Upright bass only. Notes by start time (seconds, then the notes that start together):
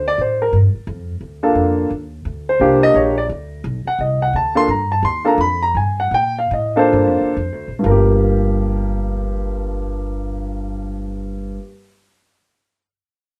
Already playing: D2
0.18 A2
0.53 G2
0.75 muted upright bass stroke
0.87 F2
1.21 D2
1.55 F2
1.90 D#2
2.25 D2
2.60 C2
2.94 A#1
3.29 D2
3.64 B1
3.85 muted upright bass stroke
3.99 C2
4.33 D2
4.68 G2
5.03 D#2
5.38 F2
5.75 G2
6.11 A#2
6.51 A2
6.93 G2
7.07 F2
7.21 D2
7.37 F2
7.52 D2
7.68 A#1
7.84 G1